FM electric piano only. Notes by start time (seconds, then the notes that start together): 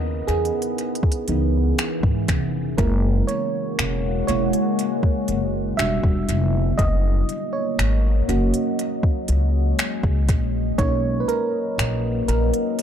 Already playing: B3 D#4 E4 A#4 B4
0.27 G#4
1.29 E3 B3 D#4
2.78 G#3 A#3 E4 A#4
3.27 C#5
4.27 G#3 A#3 E4 C#5
5.77 G3 D4 F#4 E5
6.78 D#5
7.53 C#5
8.28 A#3 C#4 F#4
10.78 A#3 C#4 D#4 C#5
11.20 B4
11.28 A#4
12.28 A#4